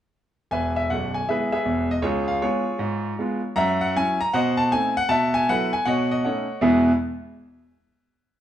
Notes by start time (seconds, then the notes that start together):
0.51 E1 E2 B4 E5 G#5
0.76 E5
0.90 B0 B1 F#5
1.14 G#5
1.29 G#3 B3 E4 G#4 B4 E5
1.52 G#4 B4 E5
1.65 E1 E2
1.91 D#5
2.02 C#2 F4 G#4 C#5
2.28 F5
2.42 G#3 B3 F4 G#4 C#5
2.79 G#2
3.19 G#3 B3 F4
3.56 F#2 E5 F#5 A#5
3.81 F#5
3.96 F#3 C#4 E4 G#5
4.21 A#5
4.33 B2 C5 D#5 F#5
4.57 A5
4.72 A3 C4 D#4 G#5
4.97 F#5
5.09 B2 E5 F#5 A5
5.34 G#5
5.49 F#3 B3 E4 A4 B4 F#5
5.73 G#5
5.85 B2 C#5 D#5 F#5
6.11 D#5
6.25 A3 C#4 D#4 C#5 D#5 F#5
6.61 E2 B2 G#3 B3 E4 G#4 E5